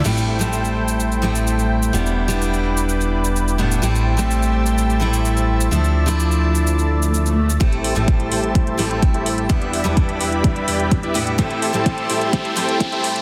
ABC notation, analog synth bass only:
X:1
M:4/4
L:1/16
Q:1/4=127
K:Am
V:1 name="Analog synth bass" clef=bass
A,,,16 | E,,,16 | A,,,16 | D,,16 |
z3 A,,,3 A,,,4 A,,,3 A,,,3 | z3 E,,,3 E,,,4 E,,,3 E,,,3 | A,,,3 A,,,3 A,,,4 A,,,3 A,,3 |]